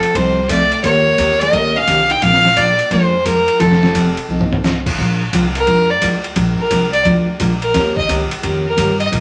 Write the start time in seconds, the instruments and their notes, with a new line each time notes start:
Already playing: hollow-body jazz guitar F3, fiddle A4
0.03 ride
0.15 upright bass C2, steel-string acoustic guitar F3 C4 D#4 A4, hollow-body jazz guitar G3, fiddle C5, kick, ride
0.49 steel-string acoustic guitar F3 C4 D#4 A4, hollow-body jazz guitar A3, fiddle D5, kick, hi-hat pedal, ride
0.72 ride
0.83 upright bass D#2, steel-string acoustic guitar D#3 A#3 C#4 G4 A#4, hollow-body jazz guitar A#3, fiddle C#5, kick, ride
1.18 upright bass D#2, steel-string acoustic guitar D#3 A#3 C#4 G4 A#4, kick, hi-hat pedal, ride
1.40 hollow-body jazz guitar A#3, fiddle D#5, ride
1.52 upright bass C#2, steel-string acoustic guitar D#3 A#3 C#4 G4 A#4, kick, ride
1.77 hollow-body jazz guitar C#4, fiddle F5
1.86 upright bass C2, steel-string acoustic guitar D#3 A#3 C#4 G4 A#4, kick, hi-hat pedal, ride
2.10 hollow-body jazz guitar D#4, fiddle G5, ride
2.21 upright bass A#1, steel-string acoustic guitar F3 G#3 D4 F4 A#4, hollow-body jazz guitar C4, fiddle F5, kick, ride
2.33 snare
2.45 snare
2.56 steel-string acoustic guitar F3 G#3 D4 F4 A#4, hollow-body jazz guitar A#3, fiddle D5, kick, hi-hat pedal, ride
2.79 ride
2.91 upright bass F2, steel-string acoustic guitar F3 G#3 D4 F4 A#4, hollow-body jazz guitar G#3, fiddle C5, kick, ride
3.25 steel-string acoustic guitar F3 G#3 D4 F4 A#4, hollow-body jazz guitar F3, fiddle A#4, kick, hi-hat pedal, ride
3.48 ride
3.59 upright bass F1, steel-string acoustic guitar F3 C4 D#4 A4, hollow-body jazz guitar F3, fiddle A4, kick, ride
3.72 snare
3.83 snare
3.94 steel-string acoustic guitar F3 C4 D#4 A4, kick, hi-hat pedal, ride
4.17 ride
4.29 upright bass C2, steel-string acoustic guitar F3 C4 D#4 A4
4.41 mid tom
4.53 mid tom
4.64 steel-string acoustic guitar F3 C4 D#4 A4, snare, hi-hat pedal
4.86 kick, crash
4.98 upright bass A#1, steel-string acoustic guitar F3 G#3 D4 F4 A#4, kick
5.33 upright bass C2, steel-string acoustic guitar F3 G#3 D4 F4 A#4, kick, hi-hat pedal, ride
5.55 fiddle A#4, ride
5.67 upright bass F2, steel-string acoustic guitar F3 G#3 D4 F4 A#4, kick, ride
5.90 fiddle D5
6.02 upright bass D2, steel-string acoustic guitar F3 G#3 D4 F4 A#4, kick, hi-hat pedal, ride
6.24 ride
6.36 upright bass A#1, steel-string acoustic guitar F3 G#3 D4 F4 A#4, kick, ride
6.59 fiddle A#4, muted upright bass stroke
6.70 upright bass C2, steel-string acoustic guitar F3 G#3 D4 F4 A#4, kick, hi-hat pedal, ride
6.92 fiddle D5, ride
7.05 upright bass D2, steel-string acoustic guitar F3 G#3 D4 F4 A#4, kick, ride
7.39 upright bass A#1, steel-string acoustic guitar F3 G#3 D4 F4 A#4, kick, hi-hat pedal, ride
7.62 fiddle A#4, ride
7.74 upright bass D#2, steel-string acoustic guitar D#3 A#3 C#4 G4 A#4, kick, snare, ride
7.97 fiddle D#5, kick
8.08 upright bass C#2, steel-string acoustic guitar D#3 A#3 C#4 G4 A#4, kick, hi-hat pedal, ride
8.31 muted upright bass stroke, ride
8.42 upright bass F2, steel-string acoustic guitar D#3 A#3 C#4 G4 A#4, kick, ride
8.66 fiddle A#4
8.77 upright bass G2, steel-string acoustic guitar D#3 A#3 C#4 G4 A#4, kick, hi-hat pedal, ride
9.00 fiddle D#5, ride
9.11 upright bass A#2, steel-string acoustic guitar F3 G#3 D4 F4 A#4, kick, ride